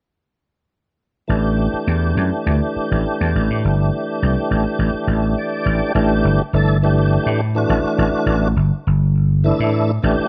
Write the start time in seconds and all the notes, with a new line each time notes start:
1.28 A1 E3 A3 D4 G4
1.73 muted slap bass stroke
1.87 E2
2.17 F#2
2.46 D2
2.76 muted slap bass stroke
2.91 A1
3.21 E2
3.35 A1
3.50 A2
3.65 G1
4.23 C2
4.51 A1
4.79 A1
4.94 muted slap bass stroke
5.07 A1
5.38 D5
5.66 A1
5.95 A1 E3 A3 D4 G4
6.24 G1
6.39 muted slap bass stroke
6.53 G1 E3 A3 D4 A4
6.83 E3 A3 D4 G4
7.26 A2
7.55 E3 A3 D4 F#4
7.69 A1
7.84 muted slap bass stroke
7.98 A1
8.26 A1
8.56 G1
8.87 G1
9.44 E3 A3 D4 E4
9.60 A2
10.03 A1 E3 A3 D4 G4
10.19 muted slap bass stroke